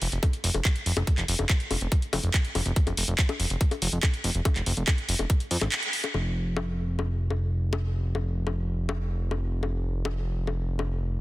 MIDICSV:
0, 0, Header, 1, 3, 480
1, 0, Start_track
1, 0, Tempo, 422535
1, 1218, Time_signature, 4, 2, 24, 8
1, 12732, End_track
2, 0, Start_track
2, 0, Title_t, "Analog synth bass"
2, 0, Program_c, 0, 38
2, 18, Note_on_c, 0, 29, 99
2, 88, Note_off_c, 0, 29, 0
2, 138, Note_on_c, 0, 29, 84
2, 208, Note_off_c, 0, 29, 0
2, 498, Note_on_c, 0, 29, 94
2, 568, Note_off_c, 0, 29, 0
2, 618, Note_on_c, 0, 29, 80
2, 688, Note_off_c, 0, 29, 0
2, 978, Note_on_c, 0, 29, 91
2, 1048, Note_off_c, 0, 29, 0
2, 1098, Note_on_c, 0, 29, 80
2, 1168, Note_off_c, 0, 29, 0
2, 1338, Note_on_c, 0, 29, 78
2, 1408, Note_off_c, 0, 29, 0
2, 1458, Note_on_c, 0, 29, 99
2, 1528, Note_off_c, 0, 29, 0
2, 1578, Note_on_c, 0, 29, 85
2, 1648, Note_off_c, 0, 29, 0
2, 1938, Note_on_c, 0, 29, 98
2, 2008, Note_off_c, 0, 29, 0
2, 2058, Note_on_c, 0, 29, 85
2, 2128, Note_off_c, 0, 29, 0
2, 2418, Note_on_c, 0, 29, 97
2, 2488, Note_off_c, 0, 29, 0
2, 2538, Note_on_c, 0, 29, 79
2, 2608, Note_off_c, 0, 29, 0
2, 2899, Note_on_c, 0, 29, 92
2, 2968, Note_off_c, 0, 29, 0
2, 3018, Note_on_c, 0, 29, 84
2, 3088, Note_off_c, 0, 29, 0
2, 3258, Note_on_c, 0, 29, 77
2, 3328, Note_off_c, 0, 29, 0
2, 3378, Note_on_c, 0, 29, 98
2, 3448, Note_off_c, 0, 29, 0
2, 3498, Note_on_c, 0, 29, 88
2, 3568, Note_off_c, 0, 29, 0
2, 3858, Note_on_c, 0, 29, 97
2, 3928, Note_off_c, 0, 29, 0
2, 3978, Note_on_c, 0, 29, 82
2, 4048, Note_off_c, 0, 29, 0
2, 4338, Note_on_c, 0, 29, 94
2, 4408, Note_off_c, 0, 29, 0
2, 4458, Note_on_c, 0, 29, 81
2, 4528, Note_off_c, 0, 29, 0
2, 4818, Note_on_c, 0, 29, 97
2, 4888, Note_off_c, 0, 29, 0
2, 4938, Note_on_c, 0, 29, 83
2, 5008, Note_off_c, 0, 29, 0
2, 5178, Note_on_c, 0, 29, 75
2, 5248, Note_off_c, 0, 29, 0
2, 5299, Note_on_c, 0, 29, 99
2, 5368, Note_off_c, 0, 29, 0
2, 5419, Note_on_c, 0, 29, 85
2, 5488, Note_off_c, 0, 29, 0
2, 5778, Note_on_c, 0, 29, 97
2, 5848, Note_off_c, 0, 29, 0
2, 5898, Note_on_c, 0, 29, 84
2, 5968, Note_off_c, 0, 29, 0
2, 6258, Note_on_c, 0, 41, 98
2, 6328, Note_off_c, 0, 41, 0
2, 6378, Note_on_c, 0, 32, 84
2, 6448, Note_off_c, 0, 32, 0
2, 6978, Note_on_c, 0, 29, 84
2, 12732, Note_off_c, 0, 29, 0
2, 12732, End_track
3, 0, Start_track
3, 0, Title_t, "Drums"
3, 18, Note_on_c, 9, 46, 105
3, 132, Note_off_c, 9, 46, 0
3, 138, Note_on_c, 9, 42, 37
3, 252, Note_off_c, 9, 42, 0
3, 258, Note_on_c, 9, 36, 120
3, 258, Note_on_c, 9, 42, 64
3, 258, Note_on_c, 9, 60, 42
3, 372, Note_off_c, 9, 36, 0
3, 372, Note_off_c, 9, 42, 0
3, 372, Note_off_c, 9, 60, 0
3, 378, Note_on_c, 9, 42, 37
3, 492, Note_off_c, 9, 42, 0
3, 498, Note_on_c, 9, 46, 103
3, 612, Note_off_c, 9, 46, 0
3, 618, Note_on_c, 9, 42, 39
3, 618, Note_on_c, 9, 60, 41
3, 732, Note_off_c, 9, 42, 0
3, 732, Note_off_c, 9, 60, 0
3, 738, Note_on_c, 9, 36, 119
3, 738, Note_on_c, 9, 39, 115
3, 738, Note_on_c, 9, 42, 64
3, 852, Note_off_c, 9, 36, 0
3, 852, Note_off_c, 9, 39, 0
3, 852, Note_off_c, 9, 42, 0
3, 858, Note_on_c, 9, 42, 39
3, 972, Note_off_c, 9, 42, 0
3, 978, Note_on_c, 9, 46, 100
3, 1092, Note_off_c, 9, 46, 0
3, 1098, Note_on_c, 9, 42, 37
3, 1098, Note_on_c, 9, 60, 81
3, 1212, Note_off_c, 9, 42, 0
3, 1212, Note_off_c, 9, 60, 0
3, 1218, Note_on_c, 9, 36, 116
3, 1218, Note_on_c, 9, 42, 64
3, 1332, Note_off_c, 9, 36, 0
3, 1332, Note_off_c, 9, 42, 0
3, 1338, Note_on_c, 9, 39, 35
3, 1338, Note_on_c, 9, 42, 38
3, 1452, Note_off_c, 9, 39, 0
3, 1452, Note_off_c, 9, 42, 0
3, 1458, Note_on_c, 9, 46, 103
3, 1572, Note_off_c, 9, 46, 0
3, 1578, Note_on_c, 9, 42, 40
3, 1578, Note_on_c, 9, 60, 42
3, 1692, Note_off_c, 9, 42, 0
3, 1692, Note_off_c, 9, 60, 0
3, 1698, Note_on_c, 9, 36, 120
3, 1698, Note_on_c, 9, 39, 114
3, 1698, Note_on_c, 9, 42, 63
3, 1812, Note_off_c, 9, 36, 0
3, 1812, Note_off_c, 9, 39, 0
3, 1812, Note_off_c, 9, 42, 0
3, 1818, Note_on_c, 9, 42, 39
3, 1932, Note_off_c, 9, 42, 0
3, 1938, Note_on_c, 9, 46, 102
3, 1938, Note_on_c, 9, 60, 41
3, 2052, Note_off_c, 9, 46, 0
3, 2052, Note_off_c, 9, 60, 0
3, 2058, Note_on_c, 9, 42, 38
3, 2172, Note_off_c, 9, 42, 0
3, 2178, Note_on_c, 9, 36, 115
3, 2179, Note_on_c, 9, 42, 64
3, 2292, Note_off_c, 9, 36, 0
3, 2292, Note_off_c, 9, 42, 0
3, 2298, Note_on_c, 9, 42, 39
3, 2412, Note_off_c, 9, 42, 0
3, 2418, Note_on_c, 9, 46, 102
3, 2418, Note_on_c, 9, 60, 83
3, 2532, Note_off_c, 9, 46, 0
3, 2532, Note_off_c, 9, 60, 0
3, 2539, Note_on_c, 9, 42, 40
3, 2652, Note_off_c, 9, 42, 0
3, 2658, Note_on_c, 9, 36, 112
3, 2658, Note_on_c, 9, 39, 119
3, 2658, Note_on_c, 9, 42, 67
3, 2772, Note_off_c, 9, 36, 0
3, 2772, Note_off_c, 9, 39, 0
3, 2772, Note_off_c, 9, 42, 0
3, 2778, Note_on_c, 9, 42, 39
3, 2892, Note_off_c, 9, 42, 0
3, 2898, Note_on_c, 9, 46, 102
3, 2898, Note_on_c, 9, 60, 41
3, 3012, Note_off_c, 9, 46, 0
3, 3012, Note_off_c, 9, 60, 0
3, 3018, Note_on_c, 9, 42, 38
3, 3132, Note_off_c, 9, 42, 0
3, 3138, Note_on_c, 9, 36, 119
3, 3138, Note_on_c, 9, 42, 69
3, 3252, Note_off_c, 9, 36, 0
3, 3252, Note_off_c, 9, 42, 0
3, 3258, Note_on_c, 9, 42, 42
3, 3258, Note_on_c, 9, 60, 41
3, 3372, Note_off_c, 9, 42, 0
3, 3372, Note_off_c, 9, 60, 0
3, 3378, Note_on_c, 9, 46, 106
3, 3492, Note_off_c, 9, 46, 0
3, 3498, Note_on_c, 9, 42, 42
3, 3612, Note_off_c, 9, 42, 0
3, 3618, Note_on_c, 9, 36, 118
3, 3618, Note_on_c, 9, 39, 119
3, 3618, Note_on_c, 9, 42, 67
3, 3732, Note_off_c, 9, 36, 0
3, 3732, Note_off_c, 9, 39, 0
3, 3732, Note_off_c, 9, 42, 0
3, 3738, Note_on_c, 9, 42, 41
3, 3738, Note_on_c, 9, 60, 83
3, 3852, Note_off_c, 9, 42, 0
3, 3852, Note_off_c, 9, 60, 0
3, 3858, Note_on_c, 9, 46, 101
3, 3972, Note_off_c, 9, 46, 0
3, 3978, Note_on_c, 9, 42, 40
3, 4092, Note_off_c, 9, 42, 0
3, 4098, Note_on_c, 9, 36, 115
3, 4098, Note_on_c, 9, 42, 70
3, 4212, Note_off_c, 9, 36, 0
3, 4212, Note_off_c, 9, 42, 0
3, 4218, Note_on_c, 9, 42, 39
3, 4218, Note_on_c, 9, 60, 42
3, 4332, Note_off_c, 9, 42, 0
3, 4332, Note_off_c, 9, 60, 0
3, 4338, Note_on_c, 9, 46, 101
3, 4452, Note_off_c, 9, 46, 0
3, 4458, Note_on_c, 9, 42, 40
3, 4572, Note_off_c, 9, 42, 0
3, 4578, Note_on_c, 9, 36, 113
3, 4578, Note_on_c, 9, 39, 116
3, 4578, Note_on_c, 9, 42, 71
3, 4578, Note_on_c, 9, 60, 42
3, 4692, Note_off_c, 9, 36, 0
3, 4692, Note_off_c, 9, 39, 0
3, 4692, Note_off_c, 9, 42, 0
3, 4692, Note_off_c, 9, 60, 0
3, 4698, Note_on_c, 9, 42, 42
3, 4812, Note_off_c, 9, 42, 0
3, 4818, Note_on_c, 9, 46, 97
3, 4932, Note_off_c, 9, 46, 0
3, 4938, Note_on_c, 9, 42, 41
3, 5052, Note_off_c, 9, 42, 0
3, 5058, Note_on_c, 9, 36, 118
3, 5058, Note_on_c, 9, 42, 69
3, 5058, Note_on_c, 9, 60, 78
3, 5172, Note_off_c, 9, 36, 0
3, 5172, Note_off_c, 9, 42, 0
3, 5172, Note_off_c, 9, 60, 0
3, 5178, Note_on_c, 9, 39, 39
3, 5178, Note_on_c, 9, 42, 42
3, 5292, Note_off_c, 9, 39, 0
3, 5292, Note_off_c, 9, 42, 0
3, 5298, Note_on_c, 9, 46, 104
3, 5412, Note_off_c, 9, 46, 0
3, 5418, Note_on_c, 9, 42, 44
3, 5532, Note_off_c, 9, 42, 0
3, 5538, Note_on_c, 9, 36, 121
3, 5538, Note_on_c, 9, 39, 122
3, 5538, Note_on_c, 9, 42, 68
3, 5538, Note_on_c, 9, 60, 40
3, 5652, Note_off_c, 9, 36, 0
3, 5652, Note_off_c, 9, 39, 0
3, 5652, Note_off_c, 9, 42, 0
3, 5652, Note_off_c, 9, 60, 0
3, 5658, Note_on_c, 9, 42, 43
3, 5772, Note_off_c, 9, 42, 0
3, 5778, Note_on_c, 9, 46, 103
3, 5892, Note_off_c, 9, 46, 0
3, 5898, Note_on_c, 9, 42, 42
3, 5898, Note_on_c, 9, 60, 39
3, 6012, Note_off_c, 9, 42, 0
3, 6012, Note_off_c, 9, 60, 0
3, 6018, Note_on_c, 9, 36, 115
3, 6018, Note_on_c, 9, 42, 72
3, 6132, Note_off_c, 9, 36, 0
3, 6132, Note_off_c, 9, 42, 0
3, 6138, Note_on_c, 9, 42, 41
3, 6252, Note_off_c, 9, 42, 0
3, 6258, Note_on_c, 9, 46, 98
3, 6372, Note_off_c, 9, 46, 0
3, 6378, Note_on_c, 9, 39, 37
3, 6378, Note_on_c, 9, 42, 43
3, 6378, Note_on_c, 9, 60, 78
3, 6492, Note_off_c, 9, 39, 0
3, 6492, Note_off_c, 9, 42, 0
3, 6492, Note_off_c, 9, 60, 0
3, 6498, Note_on_c, 9, 39, 124
3, 6498, Note_on_c, 9, 42, 71
3, 6612, Note_off_c, 9, 39, 0
3, 6612, Note_off_c, 9, 42, 0
3, 6618, Note_on_c, 9, 42, 45
3, 6732, Note_off_c, 9, 42, 0
3, 6738, Note_on_c, 9, 46, 103
3, 6852, Note_off_c, 9, 46, 0
3, 6858, Note_on_c, 9, 42, 43
3, 6858, Note_on_c, 9, 60, 39
3, 6972, Note_off_c, 9, 42, 0
3, 6972, Note_off_c, 9, 60, 0
3, 6978, Note_on_c, 9, 60, 35
3, 7092, Note_off_c, 9, 60, 0
3, 7458, Note_on_c, 9, 60, 71
3, 7572, Note_off_c, 9, 60, 0
3, 7938, Note_on_c, 9, 60, 38
3, 8052, Note_off_c, 9, 60, 0
3, 8298, Note_on_c, 9, 60, 36
3, 8412, Note_off_c, 9, 60, 0
3, 8778, Note_on_c, 9, 60, 75
3, 8892, Note_off_c, 9, 60, 0
3, 9258, Note_on_c, 9, 60, 38
3, 9372, Note_off_c, 9, 60, 0
3, 9618, Note_on_c, 9, 60, 35
3, 9732, Note_off_c, 9, 60, 0
3, 10098, Note_on_c, 9, 60, 75
3, 10212, Note_off_c, 9, 60, 0
3, 10578, Note_on_c, 9, 60, 36
3, 10692, Note_off_c, 9, 60, 0
3, 10938, Note_on_c, 9, 60, 38
3, 11052, Note_off_c, 9, 60, 0
3, 11418, Note_on_c, 9, 60, 77
3, 11532, Note_off_c, 9, 60, 0
3, 11898, Note_on_c, 9, 60, 37
3, 12012, Note_off_c, 9, 60, 0
3, 12258, Note_on_c, 9, 60, 39
3, 12372, Note_off_c, 9, 60, 0
3, 12732, End_track
0, 0, End_of_file